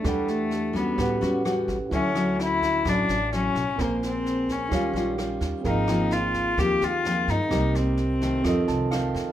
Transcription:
<<
  \new Staff \with { instrumentName = "Tine electric piano" } { \time 4/4 \key d \phrygian \tempo 4 = 129 << { r1 | r1 | r1 | r1 |
r2 r8 a''8 f''4 | } \\ { <d' g' a' fis''>2 <cis' g' b' fis''>2 | <e' fis' cis'' e''>1 | <c' bes' c'' aes''>2 <ees' g' des'' f''>2 | <c' aes' bes' f''>1 |
<c' g' bes' ees''>2 <c' f' a' ees''>2 | } >> }
  \new Staff \with { instrumentName = "Cello" } { \time 4/4 \key d \phrygian g8 a4 b4 r4. | cis'4 e'4 d'4 cis'4 | bes8 c'4 des'4 r4. | ees'4 f'4 g'8 f'4 ees'8~ |
ees'8 c'2. r8 | }
  \new Staff \with { instrumentName = "Nylon-string guitar" } { \time 4/4 \key d \phrygian << { <a d' g'>4 r8 <g des' fis'>4 <g cis' fis'>8 <g cis' fis'>8 r8 | <fis cis' e'>8 <fis cis' e'>4. <fis cis' e'>8 r8 <fis cis' e'>8 r8 | <aes' c''>2 <g des' f'>8 <g des' f'>8 <g des' f'>4 | <f bes c'>8 <f bes c'>4. <f bes c'>8 r8 <f bes c'>8 r8 |
<g bes ees'>4 r8 <ees a c'>4. <ees a c'>4 | } \\ { e2 a,2 | d2 a,2 | bes2 ees2 | aes,2 ees2 |
c2 f,2 | } >> }
  \new Staff \with { instrumentName = "Upright bass" } { \clef bass \time 4/4 \key d \phrygian e,2 a,,8 e,4 a,,16 r16 | d,2 a,,8 a,,4 ces,16 r16 | bes,,2 ees,8 bes,,4 ees,16 r16 | aes,,2 ees,8 ees,4 g,16 r16 |
c,2 f,8 c,4 f,16 r16 | }
  \new DrumStaff \with { instrumentName = "Drums" } \drummode { \time 4/4 <bd ss sn>8 sn8 sn8 <bd sn>8 <bd ss sn>8 sn8 <ss sn>8 <bd sn>8 | <bd sn>8 <ss sn>8 sn8 <bd sn>8 <bd ss sn>8 sn8 sn8 <bd sn>8 | <bd ss sn>8 sn8 sn8 <bd sn>8 <bd ss sn>8 sn8 <ss sn>8 <bd sn>8 | <bd sn>8 <ss sn>8 sn8 <bd sn>8 <bd ss sn>8 sn8 sn8 <bd sn>8 |
<bd ss sn>8 sn8 sn8 <bd sn>8 <bd ss sn>8 sn8 <ss sn>8 <bd sn>8 | }
>>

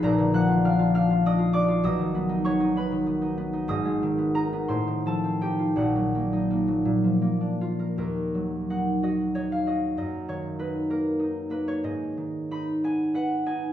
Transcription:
<<
  \new Staff \with { instrumentName = "Harp" } { \time 6/8 \key ees \minor \tempo 4. = 63 <bes' bes''>8 <ges'' ges'''>8 <f'' f'''>8 <f'' f'''>8 <ees'' ees'''>8 <d'' d'''>8 | <dis'' dis'''>4 <des'' des'''>8 <b' b''>4. | <ees'' ees'''>4 <bes' bes''>8 <c'' c'''>8 <a' a''>8 <g' g''>8 | <ges' ges''>4. r4. |
bes'4 ges''8 ees''8 des''16 f''16 ees''8 | ees''8 des''8 ces''8 bes'4 ces''16 des''16 | ees''4 ces'''8 aes''8 ges''8 aes''8 | }
  \new Staff \with { instrumentName = "Harp" } { \time 6/8 \key ees \minor <bes,, bes, f f'>16 d16 f16 f'16 d'16 f'16 d'16 f'16 d'16 f'16 d'16 f'16 | <b,, b,>16 dis16 b16 dis'16 b16 dis'16 b16 dis16 b16 dis'16 b16 dis'16 | <aes,, aes,>16 aes16 ees16 ces'16 ees'16 ces'16 a,16 ees16 f16 c'16 ees'16 f'16 | <bes,, bes,>16 ges16 bes16 ees'16 bes16 ges16 bes,16 f16 bes16 d'16 f'16 bes'16 |
ees,8 ges8 ees'8 ges'8 ees'8 ges'8 | ges,8 ees8 ees'8 bes8 ees'8 bes8 | aes,8 ees8 ees'8 ces'8 ces''8 ees'8 | }
>>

